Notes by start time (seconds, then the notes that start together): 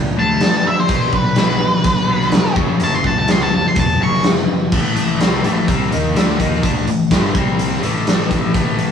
Already playing: C#2 D3 F#3 A3 D4
0.17 D2 D3 A3 D4 A5
0.41 D3 A3, snare, closed hi-hat
0.54 snare
0.65 D3 A3 E5
0.80 C5
0.88 B1 B2 F#3 B3 D4, kick, closed hi-hat
1.13 B1 B2 F#3 B4, kick
1.36 B2 F#3 B3, snare, closed hi-hat
1.61 B2 F#3
1.84 B1 B2 F#3, kick, closed hi-hat
2.08 B2 F#3 B3
2.21 snare
2.32 B2 F#3, snare, closed hi-hat
2.56 F#1 F#2 C#3 F#3 A3 C#4, kick
2.80 F#1 F#2 C#3 F#3 A5, closed hi-hat
2.94 C6
3.04 C#2 F#2 C#3 A5, kick
3.19 A5
3.28 F#2 C#3 F#3 C6, snare, closed hi-hat
3.43 A5
3.52 F#2 C#3 A5
3.68 C6
3.76 E1 F#2 C#3 A5, kick, closed hi-hat
4.00 F#1 F#2 C#3 F#3 C#6
4.13 snare
4.24 F#2 C#3, snare, closed hi-hat
4.37 snare
4.48 F#2 C#3
4.72 A1 A2 E3 A3, kick, crash
4.96 closed hi-hat
5.20 C2 C3 G3 C4, snare, closed hi-hat
5.44 A1 A2 E3 A3, closed hi-hat
5.68 C2 C3 G3 C4, kick, closed hi-hat
5.91 D#2 D#3 A#3 D#4, closed hi-hat
6.15 D2 D3 A3 D4, snare, closed hi-hat
6.39 D#2 D#3 A#3 D#4, kick, closed hi-hat
6.63 D2 D3 A3 D4, kick, closed hi-hat
6.87 A1 A2 E3, closed hi-hat
7.11 G1 G2 D3 G3, kick, snare, closed hi-hat
7.35 C2 C3 G3 C4, kick, closed hi-hat
7.59 closed hi-hat
7.72 snare
7.82 A1 A2 E3 A3, closed hi-hat
8.07 snare, closed hi-hat
8.31 kick, closed hi-hat
8.54 A1 A2 E3 A3, kick, closed hi-hat
8.79 closed hi-hat